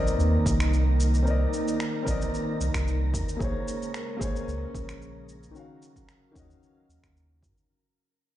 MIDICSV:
0, 0, Header, 1, 6, 480
1, 0, Start_track
1, 0, Tempo, 535714
1, 1129, Time_signature, 4, 2, 24, 8
1, 7491, End_track
2, 0, Start_track
2, 0, Title_t, "Synth texture"
2, 0, Program_c, 0, 99
2, 0, Note_on_c, 0, 70, 92
2, 0, Note_on_c, 0, 82, 84
2, 6902, Note_off_c, 0, 82, 0
2, 6904, Note_off_c, 0, 70, 0
2, 7491, End_track
3, 0, Start_track
3, 0, Title_t, "Grand piano"
3, 0, Program_c, 1, 0
3, 0, Control_c, 1, 64, 127
3, 0, Note_on_c, 1, 60, 87
3, 0, Note_on_c, 1, 70, 81
3, 0, Note_on_c, 1, 74, 80
3, 0, Note_on_c, 1, 75, 98
3, 1083, Note_off_c, 1, 60, 0
3, 1097, Note_off_c, 1, 70, 0
3, 1097, Note_on_c, 1, 60, 78
3, 1110, Note_off_c, 1, 74, 0
3, 1119, Note_off_c, 1, 75, 0
3, 1121, Note_on_c, 1, 70, 75
3, 1143, Note_on_c, 1, 74, 75
3, 1167, Note_on_c, 1, 75, 88
3, 1802, Note_off_c, 1, 60, 0
3, 1816, Note_on_c, 1, 60, 83
3, 1818, Note_off_c, 1, 70, 0
3, 1829, Note_off_c, 1, 74, 0
3, 1838, Note_on_c, 1, 70, 82
3, 1841, Note_off_c, 1, 75, 0
3, 1860, Note_on_c, 1, 74, 82
3, 1883, Note_on_c, 1, 75, 93
3, 3005, Note_off_c, 1, 60, 0
3, 3016, Note_off_c, 1, 70, 0
3, 3016, Note_on_c, 1, 58, 73
3, 3028, Note_off_c, 1, 74, 0
3, 3039, Note_off_c, 1, 75, 0
3, 3039, Note_on_c, 1, 68, 68
3, 3061, Note_on_c, 1, 72, 68
3, 3062, Control_c, 1, 64, 0
3, 3083, Note_on_c, 1, 73, 86
3, 3239, Control_c, 1, 64, 127
3, 3720, Note_off_c, 1, 58, 0
3, 3734, Note_on_c, 1, 58, 87
3, 3737, Note_off_c, 1, 68, 0
3, 3748, Note_off_c, 1, 72, 0
3, 3757, Note_on_c, 1, 68, 80
3, 3759, Note_off_c, 1, 73, 0
3, 3780, Note_on_c, 1, 72, 77
3, 3801, Note_on_c, 1, 73, 98
3, 4925, Note_off_c, 1, 58, 0
3, 4936, Note_off_c, 1, 68, 0
3, 4939, Note_on_c, 1, 51, 79
3, 4948, Note_off_c, 1, 72, 0
3, 4958, Note_off_c, 1, 73, 0
3, 4962, Note_on_c, 1, 61, 69
3, 4978, Control_c, 1, 64, 0
3, 4983, Note_on_c, 1, 66, 72
3, 5007, Note_on_c, 1, 77, 83
3, 5123, Control_c, 1, 64, 127
3, 5646, Note_off_c, 1, 51, 0
3, 5659, Note_off_c, 1, 61, 0
3, 5659, Note_on_c, 1, 51, 85
3, 5669, Note_off_c, 1, 66, 0
3, 5678, Note_on_c, 1, 61, 77
3, 5681, Note_off_c, 1, 77, 0
3, 5705, Note_on_c, 1, 66, 79
3, 5728, Note_on_c, 1, 75, 92
3, 6847, Note_off_c, 1, 51, 0
3, 6857, Note_off_c, 1, 61, 0
3, 6870, Note_off_c, 1, 66, 0
3, 6881, Note_off_c, 1, 75, 0
3, 6898, Control_c, 1, 64, 0
3, 7491, End_track
4, 0, Start_track
4, 0, Title_t, "String machine"
4, 0, Program_c, 2, 50
4, 0, Note_on_c, 2, 51, 78
4, 0, Note_on_c, 2, 58, 74
4, 0, Note_on_c, 2, 63, 89
4, 3013, Note_off_c, 2, 58, 0
4, 3014, Note_off_c, 2, 51, 0
4, 3014, Note_off_c, 2, 63, 0
4, 3049, Note_on_c, 2, 49, 78
4, 3051, Note_on_c, 2, 56, 67
4, 3053, Note_on_c, 2, 61, 89
4, 4950, Note_off_c, 2, 49, 0
4, 4951, Note_off_c, 2, 56, 0
4, 4951, Note_off_c, 2, 61, 0
4, 4977, Note_on_c, 2, 49, 77
4, 4977, Note_on_c, 2, 54, 70
4, 4979, Note_on_c, 2, 77, 82
4, 6874, Note_off_c, 2, 49, 0
4, 6874, Note_off_c, 2, 54, 0
4, 6875, Note_off_c, 2, 77, 0
4, 7491, End_track
5, 0, Start_track
5, 0, Title_t, "Sub bass"
5, 0, Program_c, 3, 38
5, 0, Note_on_c, 3, 34, 95
5, 102, Note_off_c, 3, 34, 0
5, 165, Note_on_c, 3, 39, 101
5, 339, Note_off_c, 3, 39, 0
5, 411, Note_on_c, 3, 36, 92
5, 1315, Note_off_c, 3, 36, 0
5, 1853, Note_on_c, 3, 34, 98
5, 2023, Note_off_c, 3, 34, 0
5, 2332, Note_on_c, 3, 36, 89
5, 2420, Note_off_c, 3, 36, 0
5, 2457, Note_on_c, 3, 36, 91
5, 2812, Note_on_c, 3, 39, 85
5, 2825, Note_off_c, 3, 36, 0
5, 2899, Note_off_c, 3, 39, 0
5, 3051, Note_on_c, 3, 34, 88
5, 3139, Note_off_c, 3, 34, 0
5, 3770, Note_on_c, 3, 32, 95
5, 3941, Note_off_c, 3, 32, 0
5, 4011, Note_on_c, 3, 37, 103
5, 4182, Note_off_c, 3, 37, 0
5, 4253, Note_on_c, 3, 34, 98
5, 4916, Note_off_c, 3, 34, 0
5, 5694, Note_on_c, 3, 39, 93
5, 5863, Note_off_c, 3, 39, 0
5, 6172, Note_on_c, 3, 39, 91
5, 6260, Note_off_c, 3, 39, 0
5, 6302, Note_on_c, 3, 39, 95
5, 6652, Note_on_c, 3, 42, 82
5, 6666, Note_off_c, 3, 39, 0
5, 6740, Note_off_c, 3, 42, 0
5, 7491, End_track
6, 0, Start_track
6, 0, Title_t, "Drums"
6, 64, Note_on_c, 9, 82, 42
6, 154, Note_off_c, 9, 82, 0
6, 177, Note_on_c, 9, 82, 33
6, 266, Note_off_c, 9, 82, 0
6, 412, Note_on_c, 9, 36, 103
6, 416, Note_on_c, 9, 82, 78
6, 501, Note_off_c, 9, 36, 0
6, 505, Note_off_c, 9, 82, 0
6, 541, Note_on_c, 9, 26, 76
6, 544, Note_on_c, 9, 82, 40
6, 630, Note_off_c, 9, 26, 0
6, 634, Note_off_c, 9, 82, 0
6, 657, Note_on_c, 9, 82, 31
6, 746, Note_off_c, 9, 82, 0
6, 897, Note_on_c, 9, 82, 78
6, 986, Note_off_c, 9, 82, 0
6, 1023, Note_on_c, 9, 82, 39
6, 1112, Note_off_c, 9, 82, 0
6, 1135, Note_on_c, 9, 82, 31
6, 1224, Note_off_c, 9, 82, 0
6, 1374, Note_on_c, 9, 82, 67
6, 1463, Note_off_c, 9, 82, 0
6, 1504, Note_on_c, 9, 82, 45
6, 1593, Note_off_c, 9, 82, 0
6, 1614, Note_on_c, 9, 26, 75
6, 1618, Note_on_c, 9, 82, 32
6, 1703, Note_off_c, 9, 26, 0
6, 1707, Note_off_c, 9, 82, 0
6, 1851, Note_on_c, 9, 36, 92
6, 1856, Note_on_c, 9, 82, 71
6, 1940, Note_off_c, 9, 36, 0
6, 1946, Note_off_c, 9, 82, 0
6, 1984, Note_on_c, 9, 82, 41
6, 2074, Note_off_c, 9, 82, 0
6, 2098, Note_on_c, 9, 82, 35
6, 2187, Note_off_c, 9, 82, 0
6, 2336, Note_on_c, 9, 82, 74
6, 2426, Note_off_c, 9, 82, 0
6, 2458, Note_on_c, 9, 26, 77
6, 2459, Note_on_c, 9, 36, 58
6, 2462, Note_on_c, 9, 82, 42
6, 2548, Note_off_c, 9, 26, 0
6, 2548, Note_off_c, 9, 36, 0
6, 2552, Note_off_c, 9, 82, 0
6, 2575, Note_on_c, 9, 82, 31
6, 2665, Note_off_c, 9, 82, 0
6, 2811, Note_on_c, 9, 36, 91
6, 2815, Note_on_c, 9, 82, 76
6, 2900, Note_off_c, 9, 36, 0
6, 2905, Note_off_c, 9, 82, 0
6, 2944, Note_on_c, 9, 82, 42
6, 3034, Note_off_c, 9, 82, 0
6, 3051, Note_on_c, 9, 36, 121
6, 3057, Note_on_c, 9, 82, 32
6, 3140, Note_off_c, 9, 36, 0
6, 3146, Note_off_c, 9, 82, 0
6, 3295, Note_on_c, 9, 82, 63
6, 3384, Note_off_c, 9, 82, 0
6, 3426, Note_on_c, 9, 82, 42
6, 3515, Note_off_c, 9, 82, 0
6, 3533, Note_on_c, 9, 26, 71
6, 3537, Note_on_c, 9, 82, 32
6, 3623, Note_off_c, 9, 26, 0
6, 3627, Note_off_c, 9, 82, 0
6, 3772, Note_on_c, 9, 36, 94
6, 3777, Note_on_c, 9, 82, 74
6, 3861, Note_off_c, 9, 36, 0
6, 3867, Note_off_c, 9, 82, 0
6, 3906, Note_on_c, 9, 82, 42
6, 3996, Note_off_c, 9, 82, 0
6, 4018, Note_on_c, 9, 82, 31
6, 4107, Note_off_c, 9, 82, 0
6, 4252, Note_on_c, 9, 36, 104
6, 4257, Note_on_c, 9, 82, 79
6, 4342, Note_off_c, 9, 36, 0
6, 4347, Note_off_c, 9, 82, 0
6, 4380, Note_on_c, 9, 26, 74
6, 4384, Note_on_c, 9, 82, 43
6, 4470, Note_off_c, 9, 26, 0
6, 4474, Note_off_c, 9, 82, 0
6, 4497, Note_on_c, 9, 82, 31
6, 4586, Note_off_c, 9, 82, 0
6, 4738, Note_on_c, 9, 82, 76
6, 4827, Note_off_c, 9, 82, 0
6, 4865, Note_on_c, 9, 82, 38
6, 4955, Note_off_c, 9, 82, 0
6, 4976, Note_on_c, 9, 82, 29
6, 5065, Note_off_c, 9, 82, 0
6, 5217, Note_on_c, 9, 82, 66
6, 5306, Note_off_c, 9, 82, 0
6, 5342, Note_on_c, 9, 36, 52
6, 5342, Note_on_c, 9, 82, 42
6, 5432, Note_off_c, 9, 36, 0
6, 5432, Note_off_c, 9, 82, 0
6, 5453, Note_on_c, 9, 26, 65
6, 5457, Note_on_c, 9, 82, 32
6, 5543, Note_off_c, 9, 26, 0
6, 5547, Note_off_c, 9, 82, 0
6, 5694, Note_on_c, 9, 36, 88
6, 5698, Note_on_c, 9, 82, 66
6, 5784, Note_off_c, 9, 36, 0
6, 5788, Note_off_c, 9, 82, 0
6, 5828, Note_on_c, 9, 82, 37
6, 5918, Note_off_c, 9, 82, 0
6, 5941, Note_on_c, 9, 82, 33
6, 6030, Note_off_c, 9, 82, 0
6, 6181, Note_on_c, 9, 82, 71
6, 6271, Note_off_c, 9, 82, 0
6, 6302, Note_on_c, 9, 36, 54
6, 6305, Note_on_c, 9, 26, 66
6, 6308, Note_on_c, 9, 82, 38
6, 6392, Note_off_c, 9, 36, 0
6, 6394, Note_off_c, 9, 26, 0
6, 6398, Note_off_c, 9, 82, 0
6, 6421, Note_on_c, 9, 82, 32
6, 6510, Note_off_c, 9, 82, 0
6, 6654, Note_on_c, 9, 36, 95
6, 6661, Note_on_c, 9, 82, 70
6, 6744, Note_off_c, 9, 36, 0
6, 6750, Note_off_c, 9, 82, 0
6, 6787, Note_on_c, 9, 82, 36
6, 6877, Note_off_c, 9, 82, 0
6, 7491, End_track
0, 0, End_of_file